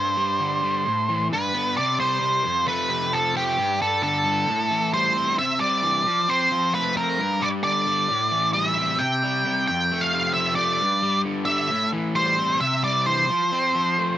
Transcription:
Already playing: G2 C5
0.17 G3
0.40 D3
0.63 G3
0.85 A2
1.09 E3
1.32 G2 B4
1.54 B3
1.77 C3 D5
1.99 G3 C5
2.21 C3
2.44 F2
2.66 A3 B4
2.90 C3
3.13 F3 A4
3.35 A3 G4
3.58 G2
3.80 G3 A4
4.02 D3 A4
4.25 G3
4.47 A2
4.71 E3
4.93 G3 C5
5.15 C4
5.38 C3 E5
5.60 G3 D5
5.83 E3
6.06 F3
6.28 C4 C5
6.51 F3
6.74 A3 B4
6.95 C4 A#4
7.17 G2
7.40 G3 D5
7.64 D3 D5
7.87 G3
8.10 A2
8.32 E3
8.53 G3 E5
8.77 C4
8.99 C3 G5
9.23 G3
9.46 C3
9.68 F2 G5
9.92 A3
10.01 F5
10.13 C3
10.34 F3 E5
10.55 A3 D5
10.81 G2
11.03 G3
11.25 D3
11.45 G3 E5
11.70 A2
11.93 E3
12.15 G3 C5
12.38 C4
12.60 C3 E5
12.84 G3 D5
13.06 E3 C5
13.29 F3
13.52 C4
13.75 F3
13.98 A3

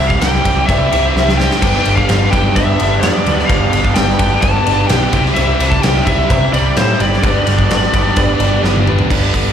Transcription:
Already playing: C3 E3 G3 C4 E4 G4 C5
0.00 C2 C4 E4 G4 C5
0.08 F5, kick
0.19 C2 C3 G3 C4 E4 G5, snare, ride, cowbell
0.23 E4 G4 C5
0.35 snare
0.45 C2 C4 E4 G4 C5, kick, ride
0.66 C2 G3 C4 E5, kick, ride, cowbell
0.70 C4 E4 G4 D5
0.92 C2 C3 G3 C4 E4 G4 C5, ride
1.15 C2 C4 E4 G4 C5, snare, cowbell
1.29 snare
1.37 C4 E4 G4 C5 G5, snare
1.51 snare
1.61 G1 G2 D3 G3 B3 D4 G4 B4, kick, ride, cowbell, crash
1.66 B4
1.85 G1 B3 D4 G4 B4, ride
1.96 F5, kick
2.08 G1 G2 D3 G3 B3 D4 G4 B4, snare, ride, cowbell
2.31 G1 G2 D3 G3 B3 D4 G4 G5, kick, ride
2.35 D4 G4 B4
2.55 G2 G3 B3 D4 G4 B4 E5, kick, ride, cowbell
2.79 G1 G3 B3 D4 G4 B4, ride
3.01 F2 G2 D3 G3 B3 D4 G4 B4 D5, snare, ride, cowbell
3.26 D2 G3 B3 D4 G4 B4, ride
3.39 snare
3.46 G1 G2 D3 B3 D4 G4 B4 F5, kick, ride, cowbell
3.51 G3 B3 D4 G4
3.73 G1 B3 D4 G4 B4, ride
3.85 kick
3.94 G1 G2 D3 G3 B3 D4 G4 B4 G5, snare, ride, cowbell
4.09 snare
4.19 G1 G2 D3 G3 B3 D4 G4 B4, kick, ride
4.42 G1 G3 B3 D4 G4 A4 A5, kick, ride, cowbell
4.66 G1 G3 B3 D4 G4 B4, ride
4.87 B1 G2 D3 G3 B3 D4 G5, snare, ride, cowbell
4.92 G4 D5
5.13 C2 C3 G3 C4 E4 G4 C5, kick, ride
5.26 snare
5.34 C2 C3 G3 C4 E5, ride, cowbell
5.39 E4 G4
5.60 C2 C4 E4 G4 C5, ride
5.70 A5, kick
5.82 C2 C3 G3 C4 E4 G4 C5 G5, snare, ride, cowbell
5.96 snare
6.05 C2 C4 E4 G4 C5 E5, kick, ride
6.29 C3 G3 C4 E4 G4 B4, kick, ride, cowbell
6.53 C2 C3 G3 C4 E4 G4 C5 D5, ride
6.76 A2 C4 E4 G4 C5, snare, ride, cowbell
7.00 G1 C4 E4 G4 C5 D5, ride
7.13 snare
7.22 G1 G2 D3 G3 B3 D4 G4 B4, kick, ride, cowbell
7.46 G1 B3 D4 G4 D5, ride
7.59 kick
7.70 G1 G2 D3 G3 B3 D4 G4 B4, snare, ride, cowbell
7.83 snare
7.93 G1 G2 D3 G3 B3 D4 G4 B4, kick, ride
8.16 G1 G3 B3 D4 G4 B4, kick, ride, cowbell
8.39 G1 G3 B3 D4 G4 B4, ride
8.63 G1 G2 D3 G3 B3 D4 G4 B4, snare, cowbell
8.76 high tom
8.87 G3 B3 D4 G4 B4, mid tom
8.99 floor tom
9.10 G1 G2 D3 G3 B3 D4 G4 B4, kick, crash
9.33 G1 D3, kick, open hi-hat

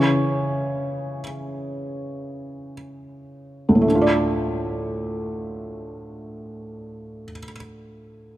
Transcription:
Already playing: C#3 E3 C#4 C#5
3.69 D2
3.75 A2
3.81 A3
3.88 D4
3.95 F4
4.01 D5

